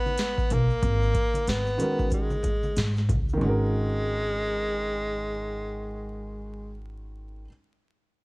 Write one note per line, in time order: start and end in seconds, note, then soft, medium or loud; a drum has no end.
0.00 0.54 B3 loud
0.06 high conga medium
0.06 shaker soft
0.18 snare loud
0.18 closed hi-hat medium
0.18 shaker medium
0.38 kick loud
0.38 shaker soft
0.50 0.67 B1 medium
0.50 1.51 A#3 loud
0.50 closed hi-hat medium
0.50 high conga soft
0.50 low conga medium
0.50 shaker soft
0.70 shaker soft
0.82 1.10 G#1 loud
0.82 kick loud
0.82 closed hi-hat medium
0.82 shaker medium
1.02 shaker soft
1.14 kick medium
1.14 closed hi-hat medium
1.14 shaker soft
1.34 closed hi-hat medium
1.34 high conga medium
1.34 shaker soft
1.47 1.74 G#1 medium
1.47 2.13 B3 medium
1.47 snare loud
1.47 closed hi-hat medium
1.47 shaker medium
1.66 shaker soft
1.78 2.27 D#3 medium
1.78 2.27 G#3 medium
1.78 2.28 C#4 medium
1.78 2.28 F#4 medium
1.78 2.29 A#4 medium
1.78 closed hi-hat medium
1.78 low conga medium
1.78 shaker soft
1.99 kick medium
1.99 shaker soft
2.10 3.06 G#3 medium
2.10 kick medium
2.10 closed hi-hat medium
2.10 shaker medium
2.30 high conga medium
2.30 shaker soft
2.43 kick medium
2.43 closed hi-hat medium
2.43 low conga medium
2.43 shaker soft
2.63 high conga medium
2.63 shaker soft
2.76 3.11 G#2 medium
2.76 snare loud
2.76 closed hi-hat medium
2.76 shaker medium
2.96 snare soft
2.96 shaker soft
3.09 3.36 C#2 medium
3.09 kick medium
3.09 closed hi-hat medium
3.09 high conga soft
3.09 low conga medium
3.09 shaker soft
3.29 shaker soft
3.33 7.41 D#3 medium
3.33 7.43 G#3 medium
3.41 7.45 G#1 loud
3.41 6.76 G#3 loud
3.41 7.45 C#4 medium
3.41 7.47 F#4 medium
3.41 high conga medium
3.49 7.49 A#4 medium